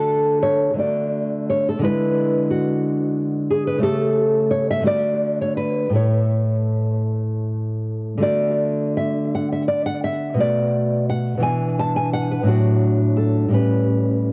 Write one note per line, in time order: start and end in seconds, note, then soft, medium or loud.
0.00 0.73 D3 medium
0.00 0.74 A3 soft
0.00 0.75 F#4 medium
0.00 0.40 A4 medium
0.43 0.78 C#5 medium
0.74 1.78 D3 medium
0.74 1.80 A3 soft
0.78 1.81 F#4 soft
0.78 1.47 D5 medium
1.50 1.67 C#5 medium
1.69 1.84 A4 medium
1.79 3.78 D3 medium
1.79 3.79 G#3 medium
1.83 3.80 E4 medium
1.83 2.49 B4 loud
2.50 3.47 F#4 medium
3.50 3.67 G#4 medium
3.67 3.83 B4 medium
3.78 4.81 C#3 medium
3.78 4.82 A3 medium
3.82 4.84 G4 medium
3.82 4.49 A4 loud
4.50 4.69 C#5 medium
4.70 4.86 E5 loud
4.81 5.90 D3 medium
4.81 5.89 A3 soft
4.81 5.92 F#4 soft
4.87 5.39 D5 medium
5.41 5.56 C#5 medium
5.57 5.94 B4 medium
5.90 8.17 A2 medium
5.90 8.17 A3 soft
5.94 8.19 E4 soft
5.94 7.07 C#5 medium
8.18 10.34 D3 medium
8.18 10.36 A3 soft
8.18 10.36 F#4 soft
8.22 8.95 D5 medium
8.97 9.33 E5 medium
9.35 9.52 F#5 medium
9.52 9.68 E5 medium
9.68 9.85 D5 medium
9.86 10.04 F#5 medium
10.04 10.39 E5 medium
10.34 11.36 B2 medium
10.34 11.40 A3 soft
10.39 11.41 F#4 medium
10.39 11.08 D5 medium
11.10 11.42 F#5 medium
11.38 12.41 B2 medium
11.38 12.42 E3 soft
11.42 12.43 D4 soft
11.42 11.77 G#5 medium
11.79 11.96 A5 medium
11.96 12.13 G#5 medium
12.13 12.31 F#5 medium
12.31 12.48 B4 medium
12.43 13.47 A2 medium
12.43 13.49 F#3 soft
12.43 13.50 D4 soft
12.48 13.15 F#4 medium
13.17 13.52 A4 medium
13.48 14.32 A2 soft
13.48 14.32 G3 soft
13.48 14.32 C#4 soft
13.54 14.29 B4 medium